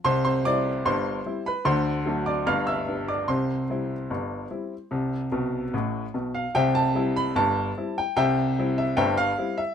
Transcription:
X:1
M:2/4
L:1/16
Q:1/4=74
K:C
V:1 name="Upright piano"
[cc'] [cc'] [dd']2 [cc']3 [Bb] | [cc']3 [dd'] [ff'] [ee']2 [dd'] | [cc']8- | [cc']6 z f |
[ceg] a2 b a3 g | [ceg]3 e [ceg] f2 e |]
V:2 name="Upright piano" clef=bass
[C,,C,]2 [G,CE]2 [G,,,G,,]2 [G,CE]2 | [D,,D,]2 [^F,A,D]2 [G,,,G,,]2 [G,B,D]2 | [C,,C,]2 [G,CE]2 [G,,,G,,]2 [G,CE]2 | [C,,C,]2 [B,,,B,,]2 [A,,,A,,]2 [B,,,B,,]2 |
[C,,C,]2 [G,CE]2 [G,,,G,,]2 [G,CE]2 | [C,,C,]2 [G,CE]2 [G,,,G,,]2 [G,CE]2 |]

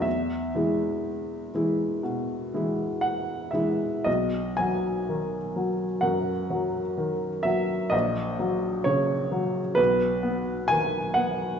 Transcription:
X:1
M:4/4
L:1/8
Q:1/4=63
K:E
V:1 name="Upright piano"
e6 f e | [K:B] d g3 f3 e | d2 c2 B2 g f |]
V:2 name="Upright piano" clef=bass
E,, [E,G,E]2 [E,G,E] B,, [E,G,E]2 [E,G,E] | [K:B] B,,, F, D, F, F,, F, D, F, | A,,, F, C, F, B,,, B, D, B, |]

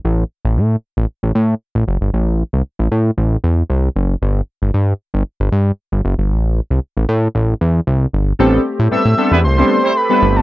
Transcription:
X:1
M:4/4
L:1/16
Q:1/4=115
K:Ador
V:1 name="Analog synth lead"
z16 | z16 | z16 | z16 |
z4 e'4 c'4 b3 a |]
V:2 name="Horn section"
z16 | z16 | z16 | z16 |
z6 z [G,B,EB] z [G,CEc] z [G,CEc] z [G,B,EB]3 |]
V:3 name="Analog polysynth"
z16 | z16 | z16 | z16 |
[G,B,CDA]2 z2 [G,B,CDA] z [G,B,CDA] z2 [G,B,CDA]2 z2 [G,B,CDA] z2 |]
V:4 name="Analog synth pad"
z16 | z16 | z16 | z16 |
[A,CG]16 |]
V:5 name="Analog synth bass" clef=bass
A,,,2 z A,,, A,,2 z A,,, z A,,, A,,2 z A,,, F,,, G,,, | A,,,3 C,, z A,,, A,,2 A,,,2 E,,2 C,,2 F,,,2 | G,,,2 z G,,, G,,2 z G,,, z G,,, G,,2 z G,,, F,,, G,,, | A,,,3 C,, z A,,, A,,2 A,,,2 E,,2 C,,2 G,,,2 |
A,,,2 z A,, A,, A,, z E,, C,,2 z4 G,,,2 |]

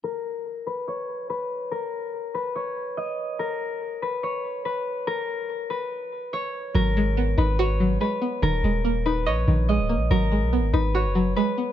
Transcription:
X:1
M:4/4
L:1/16
Q:1/4=143
K:G#m
V:1 name="Harp"
A6 B2 c4 B4 | A6 B2 c4 d4 | A6 B2 c4 B4 | A6 B6 c2 z2 |
A6 B2 c4 B4 | A6 B2 c4 d4 | A6 B2 c4 B4 |]
V:2 name="Synth pluck"
z16 | z16 | z16 | z16 |
F,2 G,2 B,2 D2 F2 F,2 G,2 B,2 | D,2 G,2 A,2 D2 d2 D,2 G,2 A,2 | F,2 G,2 B,2 D2 F2 F,2 G,2 B,2 |]
V:3 name="808-style bass" clef=bass
z16 | z16 | z16 | z16 |
G,,,6 G,,,6 z4 | D,,,2 D,,,6 A,,,2 A,,,3 C,,,3/2 A,,,3/2 | G,,,3 B,,,3/2 G,,,3/2 G,,,3 F,,,3 z4 |]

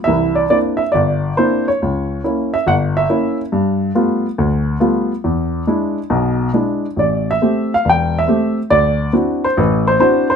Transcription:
X:1
M:4/4
L:1/8
Q:"Swing" 1/4=139
K:Gmix
V:1 name="Grand piano"
e d d e d2 c ^c- | ^c2 z e ^f e2 z | z8 | z8 |
d e2 f g e2 z | d2 z c B c c c |]
V:2 name="Grand piano"
[C,,E,]2 [_B,CDE] z G,,,2 [B,CDE] z | ^C,,2 [^A,^CE] z G,,,2 [A,CE] z | G,,2 [G,A,B,F] z D,,2 [G,A,B,F] z | E,,2 [^G,DE] z [B,,,B,,]2 [G,DE] z |
A,,,2 [A,CG] z E,,,2 [A,CG] z | D,,2 [CDE^F] z A,,,2 [CDEF] z |]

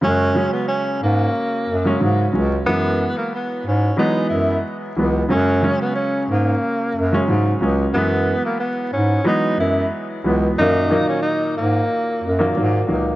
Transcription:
X:1
M:4/4
L:1/16
Q:"Swing 16ths" 1/4=91
K:F#mix
V:1 name="Tenor saxophone"
C3 B, C2 A,6 z4 | B,3 A, B,2 C2 D2 E2 z4 | C3 B, C2 A,6 z4 | B,3 A, B,2 C2 D2 E2 z4 |
D3 C D2 A,6 z4 |]
V:2 name="Upright piano" clef=bass
[C,F,G,C]2 [C,F,G,C]8 z [C,F,G,C] [C,F,G,C]2 [C,F,G,C]2 | [E,F,G,B,]6- [E,F,G,B,] z [E,F,G,B,]6 [E,F,G,B,]2 | [C,F,G,C]2 [C,F,G,C]8 z [C,F,G,C] [C,F,G,C]2 [C,F,G,C]2 | [E,F,G,B,]6- [E,F,G,B,] z [E,F,G,B,]6 [E,F,G,B,]2 |
[A,,D,F,A,]2 [A,,D,F,A,]8 z [A,,D,F,A,] [A,,D,F,A,]2 [A,,D,F,A,]2 |]
V:3 name="Bass clarinet" clef=bass
F,,3 z3 G,,2 z2 F,,2 G,,2 C,,2 | F,,3 z3 G,,2 z2 F,,2 z2 C,,2 | F,,3 z3 G,,2 z2 F,,2 G,,2 C,,2 | F,,3 z3 G,,2 z2 F,,2 z2 C,,2 |
F,,3 z3 G,,2 z2 F,,2 G,,2 C,,2 |]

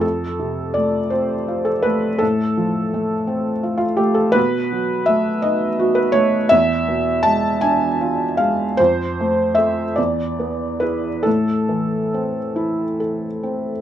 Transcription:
X:1
M:12/8
L:1/16
Q:3/8=55
K:Flyd
V:1 name="Felt piano"
A4 d2 c3 A B2 A8- A F G A | B4 e2 ^d3 B ^c2 e4 a2 ^g4 f2 | c4 e2 d4 B2 A8- A2 z2 |]
V:2 name="Felt piano"
F,,2 C,2 A,2 C2 F2 A,2 A,,2 F,2 A,2 C2 F2 A,2 | B,,2 ^F,2 A,2 ^D2 ^F2 A,2 E,,2 B,,2 ^G,2 =D2 =F2 G,2 | F,,2 A,2 [CA]2 E,,2 B,2 [E^G]2 A,,2 E,2 C2 E2 A2 C2 |]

